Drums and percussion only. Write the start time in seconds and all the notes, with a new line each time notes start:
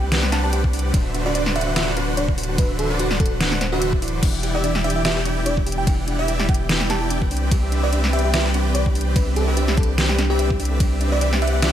0.12 snare, closed hi-hat, ride
0.23 snare
0.32 snare, closed hi-hat
0.53 closed hi-hat
0.64 kick
0.73 open hi-hat
0.79 closed hi-hat
0.94 kick, closed hi-hat, ride
1.14 closed hi-hat
1.35 closed hi-hat
1.46 snare
1.56 closed hi-hat
1.61 closed hi-hat
1.76 snare, closed hi-hat, ride
1.97 closed hi-hat
2.17 closed hi-hat
2.29 kick
2.38 open hi-hat
2.43 closed hi-hat
2.58 kick, closed hi-hat, ride
2.79 closed hi-hat
2.99 closed hi-hat
3.11 snare
3.20 kick, closed hi-hat
3.26 closed hi-hat
3.41 snare, closed hi-hat, ride
3.52 snare
3.61 snare, closed hi-hat
3.82 closed hi-hat
3.93 kick
4.02 open hi-hat
4.08 closed hi-hat
4.23 kick, closed hi-hat, crash, ride
4.43 closed hi-hat
4.64 closed hi-hat
4.75 snare
4.84 closed hi-hat
4.90 closed hi-hat
5.05 snare, closed hi-hat, ride
5.25 closed hi-hat
5.46 closed hi-hat
5.57 kick
5.67 open hi-hat
5.72 closed hi-hat
5.87 kick, closed hi-hat, ride
6.08 closed hi-hat
6.28 closed hi-hat
6.40 snare
6.49 kick, closed hi-hat
6.54 closed hi-hat
6.69 snare, closed hi-hat, ride
6.81 snare
6.90 snare, closed hi-hat
7.10 closed hi-hat
7.22 kick
7.31 open hi-hat
7.37 closed hi-hat
7.52 kick, closed hi-hat, ride
7.72 closed hi-hat
7.93 closed hi-hat
8.04 snare
8.13 closed hi-hat
8.19 closed hi-hat
8.34 snare, closed hi-hat, ride
8.54 closed hi-hat
8.75 closed hi-hat
8.86 kick
8.95 open hi-hat
9.01 closed hi-hat
9.16 kick, closed hi-hat, ride
9.36 closed hi-hat
9.57 closed hi-hat
9.68 snare
9.77 kick, closed hi-hat
9.83 closed hi-hat
9.98 snare, closed hi-hat, ride
10.09 snare
10.19 snare, closed hi-hat
10.39 closed hi-hat
10.50 kick
10.60 open hi-hat
10.65 closed hi-hat
10.80 kick, closed hi-hat, ride
11.01 closed hi-hat
11.21 closed hi-hat
11.33 snare
11.42 closed hi-hat
11.48 closed hi-hat
11.62 snare, closed hi-hat, ride